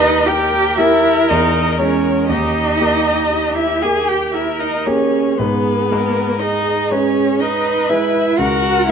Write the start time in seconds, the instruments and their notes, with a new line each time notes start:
Already playing: grand piano D#2 A#3 G4 A#4, cello D#4, viola B4, violin D#5
0.26 cello G4, viola A#4, violin G5
0.78 grand piano A#3 G4 A#4, cello E4, violin E5
1.29 grand piano E2, cello D#4, violin D#5
1.79 grand piano G#3 G#4 C#5, cello C#4, violin C#5
2.28 grand piano D#2, cello D#4, viola G4, violin D#5
2.80 grand piano A#3 G4 A#4
3.32 viola G4
3.56 cello E4, violin E5
3.82 grand piano A#3 G4 A#4, cello G#4, violin G#5
4.08 cello G4, violin G5
4.33 cello E4, viola A#4, violin E5
4.60 cello D#4, violin D#5
4.86 grand piano A#3 G4 A#4, cello C#4, viola G#4, violin C#5
5.39 grand piano G#2, cello B3, viola G#4, violin B4
5.91 grand piano G#3 G#4 B4, viola A#4
6.40 cello D#4, viola G#4, violin D#5
6.91 grand piano G#3 G#4 B4, cello C#4, violin C#5
7.40 cello D#4, viola B4, violin D#5
7.89 grand piano G#3 G#4 B4, cello E4, violin E5
8.39 grand piano C#2, cello F#4, viola A#4, violin F#5
8.88 cello E4